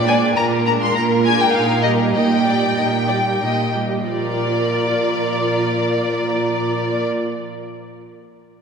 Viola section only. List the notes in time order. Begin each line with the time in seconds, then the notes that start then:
0.08 G#3 D4
0.38 A#3 F4
0.68 G#3 D4
0.96 A#3 F4
1.26 G#3 D4
1.55 A#3 D#4
1.87 G3 G4
2.16 A#3 D#4
2.46 G3 G4
2.77 A#3 D#4
3.09 G3 G4
3.42 A#3 D#4
3.76 G3 G4
4.09 F3 F4